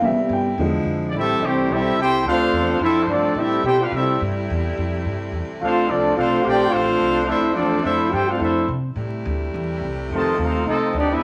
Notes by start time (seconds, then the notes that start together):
Already playing: C3 A3
0.01 C3 G3 B3 E4 E5
0.19 muted upright bass stroke
0.29 G2 G5
0.58 E2 D3 F3 G#3
0.85 F2
1.08 D5
1.13 A1 C3 G3 A3 C4 E4
1.18 C4 G4 A4 E5
1.40 C2
1.44 E3 G3 A3 C4 E4 G4 C5
1.68 B1 G3 C4 E4 G4 A4
1.73 E5
1.96 C2 E4 A4 C5 G5
2.01 C4 E4 G4
2.23 D2 F3 A3 D4 A4 C5 F5
2.27 A3 C4 F4
2.52 E2
2.79 F2 C4 E4 F4 A4 E5
3.03 G2 C5
3.09 F3 A3 C4 D4 F4 A4 D5
3.35 A2 G3 C4 E4 G4 A4 E5
3.63 B2 C4 E4 G4 A4 C5 G5
3.81 D4 F4 G4 B4 F5
3.92 C3 G3 C4 E4 G4 A4 E5
4.21 G2
4.50 E2
4.78 F2
5.05 G2
5.32 E2
5.49 muted upright bass stroke
5.61 D2 F3 A3 C4 D4 F4 A4 C5 F5
5.88 C2 F3 A3 C4 D4 F4 A4 D5
6.16 B1 A3 C4 D4 F4 A4 C5 F5
6.43 A#1 A3 C4 F4 G4 C5 D5 G5
6.69 A1 A3 C4 D4 F4 A4 C5 F5
7.00 C2
7.25 D2 A3 C4 D4 E4 A4 C5 E5
7.54 E2 F3 A3 C4 D4 F4 A4 D5
7.81 F2 A3 C4 D4 E4 A4 C5 E5
8.11 G2 E4 G4 A4 C5 G5
8.28 A3 C4 D4 F4 A4 C5 F5
8.38 F2 A3 C4 D4 E4 A4 C5 E5
8.68 C3
8.96 A2 C3 G3 A3 E4
9.25 D2
9.54 E2
9.81 C2
10.10 F2 C3 D#3 F3 A3 D#4
10.14 F4 C5 D#5 A5
10.37 D#2 A3 C4 F4
10.42 D#4 A4 C5 F5
10.64 C2 A3 C4 D#4 A4
10.68 F4 D#5
10.93 D2 B3 D4 D#4 G4 D5
11.10 G#3 B3 D4 E4 G#4 B4 E5